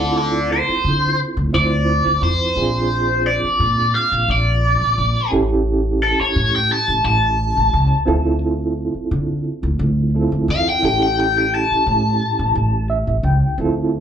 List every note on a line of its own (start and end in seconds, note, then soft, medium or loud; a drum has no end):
0.00 0.64 D2 medium
0.00 1.49 C4 medium
0.00 1.49 E4 medium
0.00 1.50 F4 medium
0.00 0.14 A4 medium
0.00 1.50 A4 medium
0.00 0.16 D5 medium
0.17 0.49 A4 medium
0.17 0.50 D5 medium
0.53 1.18 C5 medium
0.69 muted upright bass stroke soft
0.84 1.16 D3 medium
1.37 1.52 D2 medium
1.53 2.02 D2 medium
1.53 2.54 C4 soft
1.53 2.56 E4 soft
1.53 2.56 F4 soft
1.53 2.57 C5 medium
1.53 2.21 D5 medium
2.06 2.21 D2 medium
2.22 2.38 F2 medium
2.22 3.23 C5 medium
2.55 3.39 A#1 medium
2.55 5.27 C4 medium
2.55 5.27 D4 medium
2.55 5.28 F4 medium
2.55 5.28 G#4 medium
3.27 3.93 D5 medium
3.43 muted upright bass stroke soft
3.60 3.91 A#2 medium
3.95 4.28 F5 medium
4.12 4.27 A#1 medium
4.28 4.77 A#1 medium
4.28 5.30 D5 medium
4.81 4.96 A#1 medium
4.98 5.14 A#1 medium
5.30 6.15 A1 medium
5.30 8.02 C#4 medium
5.30 8.03 E4 medium
5.30 8.03 G4 medium
5.30 8.04 A4 medium
6.03 6.19 A4 medium
6.20 6.53 C#5 medium
6.20 muted upright bass stroke soft
6.36 6.67 A2 medium
6.56 6.70 G5 medium
6.72 7.04 A5 medium
6.88 7.03 A1 medium
7.04 7.52 A1 loud
7.04 8.38 A5 medium
7.57 7.72 A1 medium
7.73 7.90 C#2 medium
8.06 8.90 D2 medium
8.06 10.09 C4 medium
8.06 10.10 E4 medium
8.06 10.10 F4 medium
8.06 10.10 A4 medium
8.94 muted upright bass stroke soft
9.11 9.43 D3 medium
9.63 9.78 D2 medium
9.79 10.28 D2 loud
10.15 10.83 C4 medium
10.15 10.82 E4 soft
10.15 10.84 F4 soft
10.15 10.84 A4 medium
10.32 10.47 D2 medium
10.48 10.65 E2 medium
10.48 10.67 F5 medium
10.69 10.84 G5 medium
10.82 11.66 A1 medium
10.82 13.54 C#4 medium
10.82 13.55 E4 medium
10.82 13.55 G4 medium
10.82 13.56 A4 medium
10.82 11.02 G5 medium
11.03 11.18 G5 medium
11.20 11.36 G5 medium
11.38 11.53 G5 medium
11.55 12.87 A5 medium
11.71 muted upright bass stroke soft
11.87 12.18 A2 medium
12.39 12.54 A1 medium
12.55 13.04 A1 medium
12.90 13.22 E5 medium
13.07 13.23 A1 medium
13.23 13.40 C#2 medium
13.23 13.56 G5 medium
13.58 14.00 D2 medium
13.58 14.00 C4 medium
13.58 14.00 E4 medium
13.58 14.00 F4 medium
13.58 14.00 A4 medium